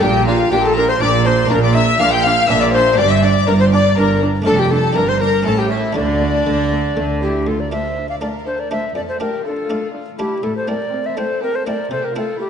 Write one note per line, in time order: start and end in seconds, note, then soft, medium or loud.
0.00 0.46 A#1 loud
0.00 0.46 A#2 loud
0.00 0.43 A#2 medium
0.00 1.44 A#3 medium
0.00 1.45 D4 medium
0.00 0.11 D4 medium
0.00 1.45 G4 medium
0.00 0.27 G4 loud
0.00 0.26 G4 loud
0.00 0.27 G5 loud
0.27 0.35 D4 medium
0.27 0.51 F4 loud
0.27 0.35 F4 medium
0.27 0.51 F5 loud
0.51 0.95 A#1 loud
0.51 0.95 A#2 loud
0.51 0.92 A#2 medium
0.51 0.60 D4 medium
0.51 0.63 G4 medium
0.51 0.57 G4 loud
0.51 0.64 G5 loud
0.64 0.76 A4 medium
0.64 0.77 A5 loud
0.76 0.84 D4 medium
0.76 0.89 A#4 loud
0.76 0.90 A#4 loud
0.76 0.89 A#5 loud
0.89 0.94 C5 medium
0.89 1.03 C5 medium
0.89 1.01 C6 loud
1.01 1.44 A#1 loud
1.01 1.41 A#2 medium
1.01 1.44 A#2 loud
1.01 1.09 D4 medium
1.01 1.25 D5 loud
1.01 1.28 D5 loud
1.01 1.09 D6 loud
1.25 1.34 D4 medium
1.25 1.33 C5 loud
1.25 1.50 C5 loud
1.25 1.50 C6 loud
1.45 2.92 A#3 medium
1.45 2.92 D4 medium
1.45 2.93 F4 medium
1.45 1.54 A#4 loud
1.50 1.93 A#1 loud
1.50 1.90 A#2 medium
1.50 1.93 A#2 loud
1.50 1.58 D4 medium
1.50 1.62 A#4 loud
1.50 1.63 A#5 loud
1.62 1.74 D5 loud
1.62 1.76 D5 medium
1.62 1.75 D6 loud
1.75 1.83 D4 medium
1.75 1.99 E5 loud
1.75 2.01 E5 loud
1.75 1.99 E6 loud
1.99 2.43 A#1 loud
1.99 2.43 A#2 medium
1.99 2.40 A#2 medium
1.99 2.07 D4 medium
1.99 2.12 F5 loud
1.99 2.13 F5 loud
1.99 2.12 F6 loud
2.11 2.25 G5 loud
2.11 2.24 G5 loud
2.11 2.25 G6 loud
2.24 2.33 D4 medium
2.24 2.50 F5 loud
2.24 2.49 F5 loud
2.24 2.49 F6 loud
2.48 2.92 A#1 medium
2.48 2.92 A#2 loud
2.48 2.89 A#2 medium
2.48 2.57 D4 medium
2.48 2.62 E5 loud
2.48 2.61 E5 loud
2.48 2.61 E6 loud
2.60 2.72 D5 loud
2.60 2.73 D5 loud
2.60 2.67 D6 loud
2.73 2.82 D4 medium
2.73 2.99 C5 loud
2.73 2.98 C5 loud
2.73 2.98 C6 loud
2.94 4.40 A#3 medium
2.94 4.41 D4 medium
2.94 4.41 G4 medium
2.98 3.42 G1 loud
2.98 3.42 G2 loud
2.98 3.39 G2 medium
2.98 3.06 D4 medium
2.98 3.12 D5 loud
2.98 3.10 D5 loud
2.98 3.10 D6 loud
3.10 3.23 E5 loud
3.10 3.22 E5 medium
3.10 3.23 E6 loud
3.23 3.31 D4 medium
3.23 3.48 D5 loud
3.23 3.47 D5 loud
3.23 3.47 D6 loud
3.47 3.91 G1 medium
3.47 3.88 G2 medium
3.47 3.91 G2 medium
3.47 3.56 D4 medium
3.47 3.60 A#4 loud
3.47 3.53 A#4 loud
3.47 3.60 A#5 loud
3.60 3.65 C5 medium
3.60 3.72 C5 medium
3.60 3.73 C6 loud
3.71 3.81 D4 medium
3.71 3.96 D5 loud
3.71 3.80 D6 loud
3.96 4.41 G1 medium
3.96 4.40 G2 medium
3.96 4.37 G2 medium
3.96 4.06 D4 medium
3.96 4.21 A#4 medium
3.96 4.21 A#5 loud
4.22 4.30 D4 medium
4.42 4.92 A3 medium
4.42 4.91 D4 medium
4.42 4.94 A4 medium
4.46 4.90 F1 medium
4.46 4.90 F2 medium
4.46 4.87 F2 medium
4.46 4.55 D4 medium
4.46 4.58 A4 loud
4.46 4.61 A4 loud
4.46 4.51 A5 loud
4.58 4.71 G4 medium
4.58 4.73 G4 medium
4.58 4.71 G5 medium
4.71 4.80 D4 medium
4.71 4.95 A4 medium
4.71 4.97 A4 medium
4.71 4.96 A5 loud
4.93 5.40 G1 medium
4.93 5.40 G2 medium
4.93 5.37 G2 medium
4.93 5.43 D4 medium
4.93 5.04 D4 medium
4.93 5.42 E4 medium
4.93 5.08 A#4 medium
4.93 5.10 A#4 medium
4.93 5.08 A#5 loud
5.09 5.21 C5 medium
5.09 5.23 C5 medium
5.09 5.21 C6 loud
5.21 5.29 D4 medium
5.21 5.45 A#4 medium
5.21 5.48 A#4 medium
5.21 5.45 A#5 loud
5.42 5.90 A1 medium
5.42 5.87 A2 medium
5.42 5.90 A2 medium
5.42 5.93 C#4 medium
5.42 5.54 C#4 medium
5.42 5.93 E4 medium
5.42 5.58 A4 medium
5.42 5.60 A4 loud
5.42 5.58 A5 loud
5.58 5.70 G4 medium
5.58 5.72 G4 medium
5.58 5.71 G5 medium
5.71 5.79 C#4 medium
5.71 5.96 E4 medium
5.71 5.96 E5 medium
5.71 5.79 E5 medium
5.93 6.40 D2 medium
5.93 6.37 D3 medium
5.93 6.40 D3 medium
5.93 6.04 A3 medium
5.93 7.41 D4 medium
5.93 7.22 D4 medium
5.93 7.42 F4 medium
5.93 7.20 D5 loud
5.93 7.20 D5 medium
6.21 6.29 A3 medium
6.46 6.91 D2 medium
6.46 6.91 D3 medium
6.46 6.88 D3 medium
6.46 6.55 A3 medium
6.72 6.80 A3 medium
6.96 7.41 D2 medium
6.96 7.41 D3 medium
6.96 7.38 D3 medium
6.96 7.04 A3 medium
7.22 7.30 A3 medium
7.22 7.46 E4 medium
7.22 7.49 G4 medium
7.47 7.86 D2 soft
7.47 7.85 D2 soft
7.47 7.59 F4 soft
7.47 7.62 A4 medium
7.59 7.71 A#4 soft
7.59 7.71 D5 soft
7.72 8.07 A3 soft
7.72 8.08 D4 soft
7.72 8.08 F4 soft
7.72 8.09 C5 soft
7.72 8.08 E5 medium
7.97 8.34 D4 soft
7.97 8.34 F4 soft
8.09 8.21 D5 soft
8.09 8.15 F5 soft
8.21 8.57 A3 soft
8.21 8.57 D4 soft
8.21 8.57 F4 soft
8.21 8.46 A#4 soft
8.21 8.27 D5 medium
8.46 8.83 D4 soft
8.46 8.83 F4 soft
8.46 8.59 A4 soft
8.46 8.61 C5 medium
8.59 8.71 A#4 soft
8.59 8.71 D5 medium
8.71 8.89 A3 soft
8.71 8.89 D4 soft
8.71 8.89 F4 soft
8.71 8.79 C5 soft
8.71 8.95 E5 medium
8.95 9.35 F2 medium
8.95 9.34 F2 soft
8.95 9.07 A4 medium
8.95 9.01 D5 medium
9.08 9.20 A4 soft
9.08 9.20 C5 soft
9.20 9.56 A3 soft
9.20 9.56 D4 soft
9.20 9.56 F4 soft
9.20 9.44 G4 soft
9.20 9.45 A#4 medium
9.45 9.82 D4 soft
9.45 9.82 F4 soft
9.45 10.06 F4 soft
9.45 9.88 A4 medium
9.70 10.05 A3 soft
9.70 10.05 D4 soft
9.70 10.06 F4 soft
9.94 10.31 D4 soft
9.94 10.31 F4 soft
10.19 10.37 A3 soft
10.19 10.37 D4 soft
10.19 10.42 E4 soft
10.19 10.37 F4 soft
10.19 10.45 G4 medium
10.43 10.82 A2 medium
10.43 10.81 A2 soft
10.43 10.48 E4 soft
10.43 10.56 A4 medium
10.56 10.68 A4 soft
10.56 10.70 C5 medium
10.68 11.03 A3 soft
10.68 11.04 C4 soft
10.68 11.04 E4 soft
10.68 11.05 A#4 soft
10.68 11.08 D5 medium
10.93 11.29 C4 soft
10.93 11.30 E4 soft
11.05 11.17 C5 soft
11.05 11.19 E5 medium
11.17 11.53 A3 soft
11.17 11.53 C4 soft
11.17 11.53 E4 soft
11.17 11.42 A4 medium
11.17 11.42 C5 medium
11.42 11.78 C4 soft
11.42 11.79 E4 soft
11.42 11.54 G4 medium
11.42 11.57 A#4 medium
11.55 11.67 A4 soft
11.55 11.66 C5 medium
11.67 11.84 A3 soft
11.67 11.84 C4 soft
11.67 11.85 E4 soft
11.67 11.91 A#4 medium
11.67 11.91 D5 medium
11.91 12.30 C3 medium
11.91 12.29 C3 soft
11.91 12.03 A4 medium
11.91 12.06 C5 medium
12.03 12.15 G4 medium
12.03 12.16 A#4 medium
12.15 12.50 A3 soft
12.15 12.50 C4 soft
12.15 12.50 E4 soft
12.15 12.39 F4 medium
12.15 12.40 A4 medium
12.40 12.50 A3 soft
12.40 12.50 E4 soft
12.40 12.50 G4 medium